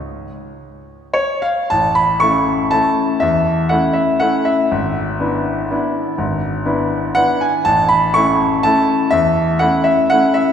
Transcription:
\new Staff \with { instrumentName = "Grand piano" } { \time 3/4 \key des \major \tempo 4 = 120 << { des'''2 des''8 f''8 | \key a \major a''8 b''8 cis'''4 a''4 | e''4 fis''8 e''8 fis''8 e''8~ | e''2.~ |
e''4. r8 fis''8 gis''8 | a''8 b''8 cis'''4 a''4 | e''4 fis''8 e''8 fis''8 e''8 | } \\ { des''2~ des''8 r8 | a,,4 <a cis' e'>4 <a cis' e'>4 | e,4 <a cis' e'>4 <a cis' e'>4 | gis,,4 <b d' e'>4 <b d' e'>4 |
gis,,4 <b d' e'>4 <b d' e'>4 | a,,4 <a cis' e'>4 <a cis' e'>4 | e,4 <a cis' e'>4 <a cis' e'>4 | } >> }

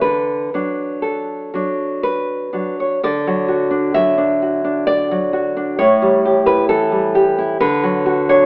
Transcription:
\new Staff \with { instrumentName = "Nylon-string guitar" } { \time 3/4 \key d \major \tempo 4 = 65 << { b'4 a'4 b'8. cis''16 | d''4 e''4 d''4 | cis''8. b'16 a'4 b'8. cis''16 | } \\ { d8 <fis d'>4 <fis d'>4 <fis d'>8 | d16 fis16 fis'16 d'16 fis16 d'16 fis'16 d'8 fis16 fis'16 d'16 | a,16 g16 g'16 e'16 e16 g16 g'16 e'16 d16 fis16 fis'16 d'16 | } >> }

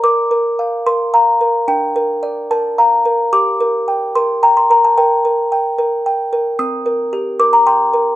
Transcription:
\new Staff \with { instrumentName = "Music box" } { \time 3/4 \key bes \major \tempo 4 = 110 << { d'''4. c'''8 bes''4 | g''4 r8 a''8 bes''4 | d'''4. c'''8 bes''16 c'''16 bes''16 a''16 | g''4 r2 |
ees'''4. d'''16 bes''16 c'''4 | } \\ { bes'8 bes'8 f''8 bes'8 f''8 bes'8 | d'8 bes'8 d''8 bes'8 f''8 bes'8 | g'8 bes'8 g''8 bes'8 g''8 bes'8 | bes'8 bes'8 g''8 bes'8 g''8 bes'8 |
c'8 bes'8 g'8 bes'8 g''8 bes'8 | } >> }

